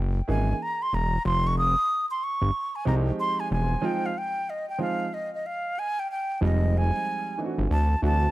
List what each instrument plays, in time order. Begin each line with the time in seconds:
Already playing: analog synth bass F#1
0.28 analog synth bass G#1, grand piano E3 A#3 C#4 D#4 G#4, flute G#5
0.62 flute A#5
0.82 flute C6
0.93 analog synth bass E1, flute A#5
1.25 analog synth bass F1, flute C6
1.47 flute C#6
1.58 flute D#6
2.11 flute C6
2.24 flute C#6
2.42 analog synth bass G1
2.76 flute G#5
2.85 analog synth bass C2, grand piano F3 G#3 C4 D#4 G4, flute A#5
3.20 flute C6
3.40 flute G#5
3.51 analog synth bass E1, flute G#5
3.82 grand piano F3 G#3 C4 D#4 F4, flute G5
4.06 flute F5
4.18 flute G5
4.50 flute D#5
4.69 flute G5
4.79 grand piano F3 G#3 C4 D#4 F4, flute F5
5.14 flute D#5
5.35 flute D#5
5.46 flute F5
5.79 flute G#5
5.99 flute G5
6.11 flute G5
6.41 analog synth bass F1, grand piano F3 G3 G#3 C4 D#4, flute D#5
6.78 flute G#5
7.38 grand piano E3 A3 C4 D4 D#4
7.45 grand piano F#4
7.58 analog synth bass G1
7.71 analog synth bass D2, flute A5
8.02 analog synth bass D2, grand piano E3 A3 C4 D4 F#4, flute A5